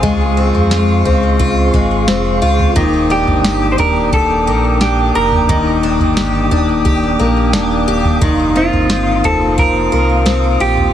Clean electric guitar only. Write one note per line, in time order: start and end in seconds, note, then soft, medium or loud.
0.00 1.70 G#4 medium
3.11 3.72 G4 medium
3.72 3.79 C5 medium
3.80 4.13 A#4 medium
4.14 4.81 A4 medium
4.81 5.15 G4 medium
5.15 7.16 A#4 medium
8.57 9.27 F4 medium
9.25 9.59 A4 medium
9.59 10.61 A#4 medium
10.61 10.93 G4 medium